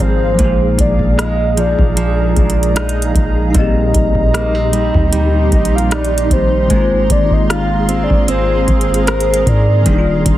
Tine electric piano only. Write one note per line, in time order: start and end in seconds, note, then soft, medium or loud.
0.00 0.33 F3 medium
0.00 0.34 A#3 medium
0.00 0.35 C4 medium
0.00 0.36 D#4 medium
0.00 0.38 G#4 medium
0.34 3.48 F3 medium
0.34 3.50 G#3 medium
0.39 3.51 A#3 medium
0.39 3.49 D#4 medium
0.44 3.53 G#4 medium
3.50 6.26 G3 medium
3.50 6.25 D#4 medium
3.55 6.27 A#3 medium
3.55 6.29 C4 medium
3.60 6.30 G4 medium
6.29 6.65 D#3 soft
6.29 6.70 G3 soft
6.29 6.70 A#3 soft
6.29 6.71 C4 soft
6.34 6.72 G4 medium
6.66 9.80 D#3 medium
6.66 9.81 G#3 medium
6.71 9.83 A#3 medium
6.71 9.84 C4 medium
6.76 9.85 F4 medium
9.82 10.38 D#3 medium
9.82 10.38 G3 medium
9.87 10.38 A#3 medium
9.87 10.38 D4 medium
9.92 9.96 D#4 medium
9.98 10.38 F4 medium